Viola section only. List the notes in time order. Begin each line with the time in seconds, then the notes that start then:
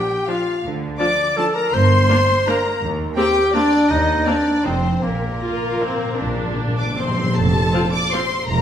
0.28 F3 D4
1.00 F3 D4
1.38 F3 D4
2.09 A#3 D4
2.47 A#3 D4
3.17 A#3 C4
3.55 A#3 C4
4.26 A#3 C4
4.65 A3 D#4
5.42 F4
5.82 C4
6.20 D4
6.98 C4
7.74 C4 F4
8.13 C4 F4